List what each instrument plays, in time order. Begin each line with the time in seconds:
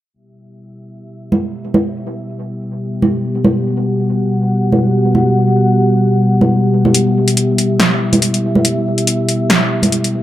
0.14 analog synth pad B3 G4 E5
1.32 high conga
1.74 high conga
3.02 high conga
3.44 high conga
3.54 analog synth pad F#5
4.72 high conga
5.15 high conga
6.41 high conga
6.85 high conga
6.94 analog synth pad E5, closed hi-hat
7.28 closed hi-hat
7.37 closed hi-hat
7.58 closed hi-hat
7.80 snare, closed hi-hat
8.13 closed hi-hat, high conga
8.22 closed hi-hat
8.34 closed hi-hat
8.55 high conga
8.65 closed hi-hat
8.98 closed hi-hat
9.07 closed hi-hat
9.29 closed hi-hat
9.50 snare, closed hi-hat
9.83 closed hi-hat, high conga
9.92 closed hi-hat
10.04 closed hi-hat